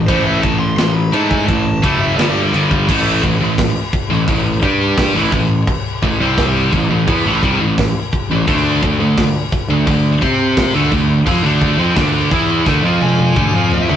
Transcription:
0.07 picked electric bass A1, distorted electric guitar A2 E3 A3, lead electric guitar C5, kick, ride
0.24 lead electric guitar E5
0.42 picked electric bass A1, distorted electric guitar A2 E3, lead electric guitar A5, kick, ride
0.59 lead electric guitar C6
0.77 picked electric bass A1, distorted electric guitar A2 E3, lead electric guitar C6, snare, ride
0.93 lead electric guitar B5
1.12 picked electric bass G#2, distorted electric guitar A2 E3 A3, lead electric guitar A5, ride
1.30 lead electric guitar G#5, kick
1.47 picked electric bass A1, distorted electric guitar A2 E3, lead electric guitar A5, kick, ride
1.82 picked electric bass F#1, distorted electric guitar A2 E3 A3, kick, ride
2.00 lead electric guitar E5
2.17 picked electric bass G1, distorted electric guitar G2 D3 G3, lead electric guitar D5, snare, ride
2.53 picked electric bass G1, distorted electric guitar G2 D3 G3, ride
2.71 kick
2.88 picked electric bass A1, distorted electric guitar A2 E3 A3, kick, crash
3.23 picked electric bass A1, distorted electric guitar A2 E3, kick, crash
3.40 picked electric bass A1, distorted electric guitar A2 E3
3.58 kick, snare, crash
3.93 kick, crash
4.10 picked electric bass A1, distorted electric guitar A2 E3
4.28 picked electric bass A1, distorted electric guitar A2 E3, kick, crash
4.62 picked electric bass G2, distorted electric guitar G3 D4 G4, kick, crash
4.97 kick, snare, crash
5.15 picked electric bass A1, distorted electric guitar A2 E3
5.32 picked electric bass A1, distorted electric guitar A2 E3, kick, crash
5.67 kick, crash
6.02 picked electric bass A1, distorted electric guitar A2 E3, kick, crash
6.20 picked electric bass C2, distorted electric guitar C3 G3 C4
6.38 kick, snare, crash
6.73 picked electric bass A1, distorted electric guitar A2 E3, kick, crash
6.90 picked electric bass A1, distorted electric guitar A2 E3
7.08 picked electric bass E2, distorted electric guitar E3 B3, kick, crash
7.26 picked electric bass A1, distorted electric guitar A2 E3
7.43 picked electric bass C2, distorted electric guitar C3 G3, kick, crash
7.60 picked electric bass A1, distorted electric guitar A2 E3
7.78 kick, snare, crash
8.13 kick, crash
8.30 picked electric bass A1, distorted electric guitar A2 E3
8.47 picked electric bass D2, distorted electric guitar D3 A3 D4, kick, crash
8.83 picked electric bass D2, distorted electric guitar D3 A3, kick, crash
9.00 picked electric bass D2, distorted electric guitar D3 A3
9.18 kick, snare, crash
9.52 kick, crash
9.68 picked electric bass D2, distorted electric guitar D3 A3
9.87 picked electric bass D2, distorted electric guitar D3 A3, kick, crash
10.21 picked electric bass C3, distorted electric guitar C4 G4 C5, kick, crash
10.57 kick, snare, crash
10.74 picked electric bass D2, distorted electric guitar D3 A3
10.92 picked electric bass D2, distorted electric guitar D3 A3, kick, crash
11.26 picked electric bass F2, distorted electric guitar F3 C4, kick, crash
11.44 picked electric bass D2, distorted electric guitar D3 A3 D4
11.61 kick, crash
11.78 picked electric bass F2, distorted electric guitar F3 C4
11.96 picked electric bass D2, distorted electric guitar D3 A3 D4, kick, snare, crash
12.31 picked electric bass E2, distorted electric guitar E3 B3 E4, kick, crash
12.66 picked electric bass D2, distorted electric guitar D3 A3, kick, snare
12.83 picked electric bass F2, distorted electric guitar F3 C4 F4
13.01 lead electric guitar G#5, high tom
13.19 high tom
13.36 picked electric bass D2, distorted electric guitar D3 A3, kick, mid tom
13.54 picked electric bass F2, distorted electric guitar F3 C4 F4
13.72 lead electric guitar E5, floor tom
13.89 picked electric bass D2, distorted electric guitar D3 A3, floor tom

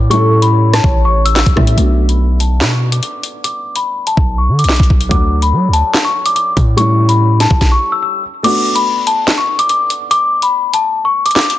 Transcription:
Already playing: 808-style bass A2, grand piano F#3 A3 D4 F#4
0.10 grand piano G3 A3 C#4 E4, soft synth lead A4, celesta C#6, closed hi-hat
0.42 celesta B5, closed hi-hat
0.53 soft synth lead C#5
0.74 celesta A5, cross-stick, snare, closed hi-hat
0.84 808-style bass A1, kick
1.05 celesta C#6
1.25 celesta E6, closed hi-hat
1.36 celesta E6, snare, clap, closed hi-hat
1.46 808-style bass A1, kick, closed hi-hat
1.56 808-style bass A2, grand piano G3 A3 C#4 E4, soft synth lead E5, kick, cross-stick
1.67 closed hi-hat
1.77 808-style bass B1, grand piano A3 B3 D4 F#4, celesta D6, closed hi-hat
2.09 celesta B5, closed hi-hat
2.40 celesta A5, closed hi-hat
2.61 808-style bass B2, snare, clap
2.71 celesta C#6
2.92 celesta D6, closed hi-hat
3.03 celesta D6, closed hi-hat
3.23 closed hi-hat
3.44 celesta D6, closed hi-hat
3.76 celesta B5, closed hi-hat
4.07 celesta A5, closed hi-hat
4.17 808-style bass B1, kick
4.38 celesta C#6
4.48 808-style bass D3
4.59 celesta D6, closed hi-hat
4.64 808-style bass B1, closed hi-hat
4.69 snare, clap, closed hi-hat
4.75 closed hi-hat
4.76 808-style bass B1, kick, closed hi-hat
4.83 closed hi-hat
4.90 808-style bass B1, kick
5.01 closed hi-hat
5.09 808-style bass D2, grand piano F#3 A3 D4 F#4, celesta D6, kick, closed hi-hat
5.42 celesta B5, closed hi-hat
5.53 808-style bass F#3
5.68 808-style bass D2
5.73 celesta A5, closed hi-hat
5.94 snare, clap
6.05 celesta C#6
6.26 celesta D6, closed hi-hat
6.35 celesta D6, closed hi-hat
6.57 808-style bass A2, kick, closed hi-hat
6.77 grand piano G3 A3 C#4 E4, celesta C#6, closed hi-hat
7.09 celesta B5, closed hi-hat
7.40 celesta A5, snare, closed hi-hat
7.51 808-style bass A1, kick
7.61 kick, snare
7.72 celesta C#6
7.92 celesta E6
8.03 celesta E6
8.43 grand piano A3 B3 D4 F#4, celesta D6, closed hi-hat, crash
8.75 celesta B5, closed hi-hat
9.07 celesta A5, closed hi-hat
9.28 snare, clap
9.38 celesta C#6
9.59 celesta D6, closed hi-hat
9.69 celesta D6, closed hi-hat
9.90 closed hi-hat
10.11 celesta D6, closed hi-hat
10.42 celesta B5, closed hi-hat
10.74 celesta A5, closed hi-hat
11.05 celesta C#6
11.26 celesta D6, closed hi-hat
11.31 closed hi-hat
11.36 celesta D6, snare, clap, closed hi-hat
11.41 closed hi-hat
11.43 closed hi-hat
11.50 closed hi-hat

